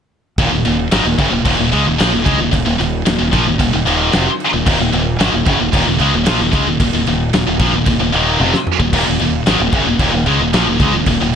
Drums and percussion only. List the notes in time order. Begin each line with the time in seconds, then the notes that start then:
0.38 kick, crash
0.65 crash
0.91 snare, crash
1.19 kick, crash
1.45 kick, crash
1.73 crash
2.00 snare, crash
2.26 kick, crash
2.53 kick, crash
2.80 crash
3.06 snare, crash
3.33 kick, crash
3.60 kick, crash
3.87 crash
4.13 snare, crash
4.40 crash
4.67 kick, crash
4.93 crash
5.20 snare, crash
5.46 kick, crash
5.73 kick, crash
6.00 crash
6.26 snare, crash
6.53 kick, crash
6.80 kick, crash
7.07 crash
7.33 snare, crash
7.59 kick, crash
7.86 kick, crash
8.13 crash
8.40 high tom
8.54 snare
8.67 mid tom
8.80 kick
8.93 kick, crash
9.19 crash
9.46 snare, crash
9.72 kick, crash
9.99 kick, crash
10.26 crash
10.53 snare, crash
10.80 kick, crash
11.06 kick, crash